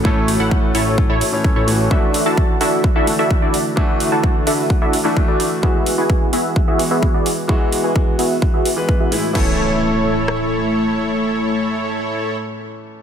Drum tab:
CC |--------|--------|--------|--------|
HH |-o-o-o-o|-o-o-o-o|-o-o-o-o|-o-o-o-o|
SD |--------|--------|--------|--------|
BD |o-o-o-o-|o-o-o-o-|o-o-o-o-|o-o-o-o-|

CC |--------|x-------|--------|
HH |-o-o-o-o|--------|--------|
SD |--------|----r---|--------|
BD |o-o-o-o-|o-------|--------|